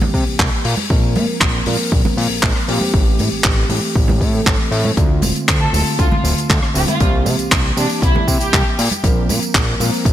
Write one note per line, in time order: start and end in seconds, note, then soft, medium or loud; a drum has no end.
0.00 0.63 E3 medium
0.00 0.63 A#3 medium
0.00 0.64 C4 medium
0.00 0.64 G4 medium
0.00 high conga medium
0.00 low conga medium
0.14 0.24 C3 loud
0.14 kick medium
0.14 open hi-hat loud
0.27 0.37 C2 soft
0.39 0.50 C2 loud
0.39 kick loud
0.39 clap loud
0.39 high conga medium
0.65 0.75 A#2 loud
0.65 open hi-hat loud
0.77 high conga medium
0.90 1.17 A#1 loud
0.90 1.63 F3 medium
0.90 1.64 A#3 medium
0.90 1.64 C4 medium
0.90 1.64 A#4 medium
0.90 kick loud
1.15 1.26 A#2 medium
1.15 open hi-hat loud
1.15 high conga loud
1.40 1.61 A#1 loud
1.40 kick loud
1.40 cross-stick medium
1.40 clap loud
1.66 1.77 A#2 loud
1.66 2.65 F3 medium
1.66 2.65 A#3 medium
1.66 2.66 C4 medium
1.66 2.66 A#4 medium
1.66 open hi-hat loud
1.66 high conga medium
1.92 2.02 A#1 medium
1.92 kick loud
2.05 high conga medium
2.05 low conga medium
2.17 2.28 A#2 loud
2.17 open hi-hat loud
2.30 2.40 A#1 soft
2.43 2.53 A#1 loud
2.43 kick loud
2.43 clap loud
2.43 high conga medium
2.56 cross-stick medium
2.68 2.79 A#2 medium
2.68 2.91 F3 medium
2.68 2.91 A#3 medium
2.68 2.91 C4 medium
2.68 2.91 G4 loud
2.68 open hi-hat loud
2.81 high conga loud
2.93 3.20 A1 medium
2.93 3.67 E3 medium
2.93 3.67 A3 medium
2.93 3.67 C4 medium
2.93 3.68 G4 medium
2.93 kick loud
3.19 3.29 A2 medium
3.19 open hi-hat loud
3.19 high conga medium
3.32 3.42 A1 soft
3.44 3.65 A1 loud
3.44 kick loud
3.44 clap loud
3.69 3.80 A2 loud
3.69 4.31 E3 medium
3.69 4.31 A3 medium
3.69 4.31 C4 medium
3.69 4.32 G4 medium
3.69 open hi-hat loud
3.69 high conga medium
3.95 4.22 A1 medium
3.95 kick loud
4.08 high conga medium
4.08 low conga medium
4.21 4.41 A2 medium
4.21 kick medium
4.21 open hi-hat medium
4.33 4.94 E3 medium
4.33 4.94 A3 medium
4.33 4.94 C4 medium
4.33 4.95 A4 medium
4.46 4.57 A1 medium
4.46 kick loud
4.46 clap loud
4.46 high conga medium
4.71 4.92 A2 medium
4.71 open hi-hat loud
4.85 high conga loud
4.96 5.24 D2 medium
4.96 5.70 D3 medium
4.96 5.70 A3 medium
4.96 5.71 C4 medium
4.96 5.71 F4 medium
4.96 kick loud
4.96 closed hi-hat medium
4.96 tambourine soft
5.22 5.33 D1 medium
5.22 open hi-hat loud
5.22 tambourine medium
5.22 high conga medium
5.35 closed hi-hat medium
5.35 tambourine soft
5.48 5.68 D2 loud
5.48 kick loud
5.48 cross-stick medium
5.48 clap loud
5.48 closed hi-hat medium
5.48 tambourine soft
5.61 5.79 A4 medium
5.73 5.84 D1 loud
5.73 6.72 D3 medium
5.73 6.72 A3 medium
5.73 6.72 C4 medium
5.73 6.73 F4 medium
5.73 open hi-hat loud
5.73 tambourine medium
5.73 high conga medium
5.87 tambourine medium
5.99 6.09 D2 medium
5.99 6.07 F4 medium
5.99 kick loud
5.99 closed hi-hat medium
5.99 tambourine soft
6.12 6.20 F4 medium
6.12 high conga medium
6.12 low conga medium
6.24 6.34 D1 loud
6.24 open hi-hat loud
6.24 tambourine medium
6.37 6.47 D2 soft
6.37 closed hi-hat medium
6.37 tambourine soft
6.49 6.60 D2 loud
6.49 kick loud
6.49 clap loud
6.49 closed hi-hat medium
6.49 tambourine soft
6.49 high conga medium
6.63 cross-stick medium
6.74 6.85 D1 medium
6.74 6.98 D3 medium
6.74 6.98 A3 medium
6.74 6.98 C4 medium
6.74 6.98 E4 loud
6.74 6.86 G4 medium
6.74 open hi-hat loud
6.74 tambourine medium
6.88 7.06 F4 medium
6.88 closed hi-hat medium
6.88 tambourine soft
6.88 high conga medium
7.00 7.27 C2 medium
7.00 7.73 E3 medium
7.00 7.74 A#3 medium
7.00 7.74 C4 medium
7.00 7.75 G4 medium
7.00 kick loud
7.00 closed hi-hat medium
7.00 tambourine soft
7.25 7.36 C3 medium
7.25 open hi-hat medium
7.25 tambourine medium
7.25 high conga medium
7.39 7.49 C2 soft
7.39 closed hi-hat medium
7.39 tambourine soft
7.51 7.72 C2 loud
7.51 kick loud
7.51 clap loud
7.51 closed hi-hat medium
7.51 tambourine soft
7.76 7.87 C3 loud
7.76 8.77 E3 medium
7.76 8.77 A#3 medium
7.76 8.77 C4 medium
7.76 7.95 D4 medium
7.76 8.78 G4 medium
7.76 open hi-hat loud
7.76 tambourine medium
7.76 high conga medium
7.89 tambourine medium
8.02 8.12 C2 medium
8.02 8.21 E4 medium
8.02 kick loud
8.02 closed hi-hat medium
8.02 tambourine soft
8.15 high conga medium
8.15 low conga medium
8.28 8.38 C3 loud
8.28 kick medium
8.28 open hi-hat medium
8.28 tambourine loud
8.41 8.51 C2 soft
8.41 8.79 G4 medium
8.41 closed hi-hat medium
8.41 tambourine medium
8.53 8.63 C2 loud
8.53 kick loud
8.53 clap loud
8.53 closed hi-hat medium
8.53 tambourine soft
8.53 high conga medium
8.79 8.89 A#2 medium
8.79 open hi-hat loud
8.79 tambourine medium
8.91 closed hi-hat medium
8.91 tambourine medium
8.91 high conga medium
9.03 9.31 A#1 loud
9.03 9.77 F3 medium
9.03 9.77 A#3 medium
9.03 9.78 C4 medium
9.03 9.78 A#4 medium
9.03 kick loud
9.03 closed hi-hat medium
9.03 tambourine soft
9.29 9.40 A#2 medium
9.29 open hi-hat loud
9.29 tambourine medium
9.29 high conga medium
9.43 closed hi-hat soft
9.43 tambourine medium
9.54 9.75 A#1 loud
9.54 kick loud
9.54 cross-stick medium
9.54 clap loud
9.54 closed hi-hat medium
9.54 tambourine soft
9.79 9.91 A#2 loud
9.79 10.13 F3 medium
9.79 10.13 A#3 medium
9.79 10.13 C4 medium
9.79 10.13 A#4 medium
9.79 open hi-hat loud
9.79 tambourine medium
9.79 high conga medium
9.94 tambourine soft
10.05 10.13 A#1 medium
10.05 kick loud
10.05 closed hi-hat medium
10.05 tambourine soft